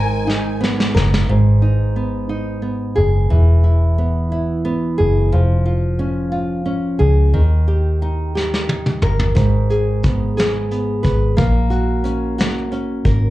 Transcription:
Already playing: G#1 G#2 D#3 D#4 A#4 G#5
0.27 D#4, snare
0.60 B3, snare
0.80 snare
0.94 F#1 A#4, snare
1.14 snare
1.29 G#1 G#2
1.62 D#4
1.96 B3
2.29 D#4
2.62 B3
2.96 F#1 G#4
3.30 E1 E3
3.64 E4
3.98 B3
4.32 E4
4.65 B3
4.98 F#1 G#4
5.32 F1 F3
5.66 F4
5.99 C#4
6.32 F4
6.66 C#4
6.99 C#2 G#4
7.34 D#2 D#3
7.68 G4
8.02 D#4
8.35 G4, snare
8.54 snare
8.69 D#4, high tom
8.86 mid tom
9.02 G1 A#4, mid tom
9.19 floor tom
9.35 G#1 G#2, kick, closed hi-hat
9.70 G#4, closed hi-hat
10.03 B3, kick, closed hi-hat
10.37 G#4, snare, closed hi-hat
10.71 B3, closed hi-hat
11.03 G#1 B4, kick, closed hi-hat
11.37 A#1 A#3, kick, closed hi-hat
11.70 F#4, closed hi-hat
12.04 C#4, closed hi-hat
12.38 F#4, snare, closed hi-hat
12.72 C#4, closed hi-hat
13.05 G#1 A#4, kick, closed hi-hat

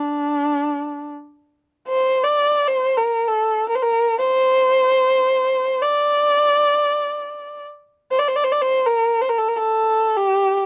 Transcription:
Already playing: D4
1.88 C5
2.24 D5
2.68 C5
2.98 A#4
3.28 A4
3.69 A#4
3.75 C5
3.82 A#4
4.18 C5
5.82 D5
8.11 C5
8.19 D5
8.28 C5
8.36 D5
8.44 C5
8.52 D5
8.61 C5
8.86 A#4
9.21 C5
9.29 A#4
9.38 A4
9.48 A#4
9.58 A4
10.17 G4
10.57 G4

